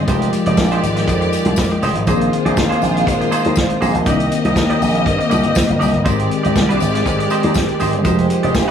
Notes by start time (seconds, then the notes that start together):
Already playing: G#3
0.06 F1 D#3 F3 G#3 D#4 F4 G4 C5 D5, kick, closed hi-hat, tambourine
0.22 closed hi-hat
0.33 muted clean electric guitar stroke, closed hi-hat, tambourine
0.46 F1 G#3 D#4 G4 D5, closed hi-hat
0.57 A#1, muted clean electric guitar stroke, kick, snare, tambourine
0.72 G#3 D#4 G4 C5, closed hi-hat
0.83 G#1, muted clean electric guitar stroke, closed hi-hat, tambourine
0.96 muted clean electric guitar stroke, snare, closed hi-hat
1.08 F2, muted clean electric guitar stroke, kick, closed hi-hat, tambourine
1.21 muted clean electric guitar stroke, closed hi-hat
1.33 closed hi-hat, tambourine
1.45 C2, muted clean electric guitar stroke, closed hi-hat
1.56 F2, muted clean electric guitar stroke, kick, snare, tambourine
1.70 muted clean electric guitar stroke, closed hi-hat
1.82 F1 G#3 D#4 G4 C5, open hi-hat, tambourine
1.95 G#1, muted clean electric guitar stroke, closed hi-hat
2.06 A#1 C3 D#3 G#3 A#3 C4 D#4 F4 G#4 C5, kick, closed hi-hat, tambourine
2.21 closed hi-hat
2.32 muted clean electric guitar stroke, closed hi-hat
2.45 A#1 A#3 D#4 G#4 D5, closed hi-hat
2.57 D#2, muted clean electric guitar stroke, kick, snare, tambourine
2.69 A#3 D#4 G#4 C5, closed hi-hat
2.82 A#1, muted clean electric guitar stroke, closed hi-hat, tambourine
2.95 muted clean electric guitar stroke, closed hi-hat
3.07 A#2, muted clean electric guitar stroke, kick, closed hi-hat, tambourine
3.21 muted clean electric guitar stroke, closed hi-hat
3.31 A#3 D#4 G#4 C5, closed hi-hat, tambourine
3.44 D#2 A#3 D#4 G#4 C5, closed hi-hat
3.56 A#2, muted clean electric guitar stroke, kick, snare, tambourine
3.69 muted clean electric guitar stroke, closed hi-hat
3.81 A#1 A#3 D#4 G#4 C5, open hi-hat, tambourine
3.94 A#1, muted clean electric guitar stroke, closed hi-hat
4.06 C2 C3 D#3 A#3 C4 D4 D#4 G4 D5 D#5, kick, closed hi-hat, tambourine
4.14 D#4
4.20 closed hi-hat
4.31 muted clean electric guitar stroke, closed hi-hat, tambourine
4.45 C2 A#3 D#4 G4 D#5, closed hi-hat
4.56 D#2, muted clean electric guitar stroke, kick, snare, tambourine
4.70 A#3 D#4 G4 D5, closed hi-hat
4.81 A#1, muted clean electric guitar stroke, open hi-hat, tambourine
4.95 muted clean electric guitar stroke, closed hi-hat
5.06 G2, muted clean electric guitar stroke, kick, closed hi-hat
5.18 muted clean electric guitar stroke, closed hi-hat
5.30 C2 D3 A#3 C4 D#4 F4 G4 D5, closed hi-hat, tambourine
5.43 G2 A#3 D#4 G4 D5, closed hi-hat
5.54 muted clean electric guitar stroke, kick, snare, tambourine
5.67 G1, muted clean electric guitar stroke, closed hi-hat
5.79 C2 A#3 D#4 G4 D5, open hi-hat, tambourine
5.93 G1, muted clean electric guitar stroke, closed hi-hat
6.04 G#1 D#3 G#3 C4 D#4 G4 C5 D5, kick, closed hi-hat, tambourine
6.20 closed hi-hat
6.30 muted clean electric guitar stroke, closed hi-hat
6.43 G#1 G#3 D#4 G4 D5, closed hi-hat
6.55 C2, muted clean electric guitar stroke, kick, snare, tambourine
6.69 G#3 D#4 G4 C5, closed hi-hat
6.80 G#1, muted clean electric guitar stroke, closed hi-hat, tambourine
6.94 muted clean electric guitar stroke, snare, closed hi-hat
7.06 G#2, muted clean electric guitar stroke, kick, closed hi-hat, tambourine
7.19 muted clean electric guitar stroke, closed hi-hat
7.30 G#3 D#4 G4 C5, closed hi-hat, tambourine
7.43 D#2 G#3 D#4 G4 C5, closed hi-hat
7.54 G#2, muted clean electric guitar stroke, kick, snare, tambourine
7.68 muted clean electric guitar stroke, closed hi-hat
7.80 G#1 G#3 D#4 G4 C5, open hi-hat, tambourine
7.93 G1, muted clean electric guitar stroke, closed hi-hat
8.02 F1 F3 G#3 D#4 F4 F#4 G4 C5, kick, closed hi-hat, tambourine
8.12 G4
8.19 closed hi-hat
8.29 muted clean electric guitar stroke, closed hi-hat, tambourine
8.43 F1 G#3 D#4 G4 D5, closed hi-hat
8.55 A#1, muted clean electric guitar stroke, kick, snare, tambourine
8.68 C5